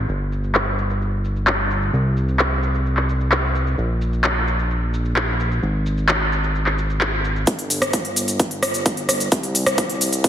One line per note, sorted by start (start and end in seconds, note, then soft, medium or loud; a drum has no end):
0.09 1.91 G1 medium
0.09 shaker soft
0.32 shaker medium
0.44 shaker soft
0.55 clap loud
0.55 shaker soft
0.78 shaker medium
0.90 shaker soft
1.02 shaker soft
1.25 shaker medium
1.36 shaker soft
1.47 clap loud
1.47 shaker soft
1.71 shaker medium
1.82 shaker soft
1.93 3.76 C2 medium
1.93 shaker soft
2.17 shaker medium
2.28 shaker soft
2.39 clap loud
2.39 shaker soft
2.63 shaker medium
2.74 shaker soft
2.86 shaker soft
2.97 clap soft
3.09 shaker medium
3.21 shaker soft
3.32 clap loud
3.32 shaker soft
3.55 shaker medium
3.67 shaker soft
3.78 5.60 A#1 medium
3.78 shaker soft
4.01 shaker medium
4.13 shaker soft
4.24 clap loud
4.24 shaker soft
4.48 shaker medium
4.59 shaker soft
4.71 shaker soft
4.94 shaker medium
5.05 shaker soft
5.16 clap loud
5.16 shaker soft
5.40 shaker medium
5.51 shaker soft
5.62 7.45 G#1 medium
5.62 shaker soft
5.86 shaker medium
5.98 shaker soft
6.09 clap loud
6.09 shaker soft
6.32 shaker medium
6.44 shaker soft
6.55 shaker soft
6.66 clap soft
6.78 shaker medium
6.90 shaker soft
7.01 clap loud
7.01 shaker soft
7.25 shaker medium
7.36 shaker soft
7.47 9.30 G1 medium
7.47 kick loud
7.47 closed hi-hat medium
7.47 shaker soft
7.59 closed hi-hat soft
7.70 open hi-hat loud
7.70 shaker medium
7.82 cross-stick medium
7.82 closed hi-hat medium
7.82 shaker soft
7.93 kick loud
7.93 closed hi-hat medium
7.93 shaker soft
8.05 closed hi-hat soft
8.16 open hi-hat medium
8.16 shaker medium
8.28 closed hi-hat soft
8.28 shaker soft
8.39 kick loud
8.39 closed hi-hat medium
8.39 shaker soft
8.51 closed hi-hat soft
8.63 cross-stick medium
8.63 open hi-hat loud
8.63 shaker medium
8.74 closed hi-hat medium
8.74 shaker soft
8.86 kick loud
8.86 closed hi-hat medium
8.86 shaker soft
8.97 closed hi-hat soft
9.09 cross-stick medium
9.09 open hi-hat medium
9.09 shaker medium
9.20 closed hi-hat medium
9.20 shaker soft
9.32 10.29 C2 medium
9.32 kick loud
9.32 closed hi-hat medium
9.32 shaker soft
9.43 closed hi-hat soft
9.55 open hi-hat loud
9.55 shaker medium
9.66 cross-stick medium
9.66 closed hi-hat medium
9.66 shaker soft
9.78 kick loud
9.78 closed hi-hat medium
9.78 shaker soft
9.90 closed hi-hat soft
10.01 open hi-hat medium
10.01 shaker medium
10.13 closed hi-hat soft
10.13 shaker soft
10.24 kick loud
10.24 closed hi-hat medium
10.24 shaker soft